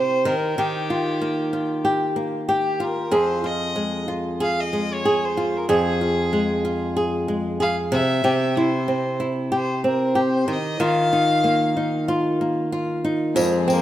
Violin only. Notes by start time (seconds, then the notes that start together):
Already playing: C5
0.28 A#4
0.59 G4
2.51 G4
2.84 A#4
3.15 C5
3.46 D#5
4.42 F5
4.61 D#5
4.93 C#5
5.25 C5
5.57 A#4
5.69 G#4
7.62 F5
7.94 E5
8.58 C5
9.55 C5
9.87 A#4
10.20 C5
10.53 D#5
10.85 F5
13.70 A#3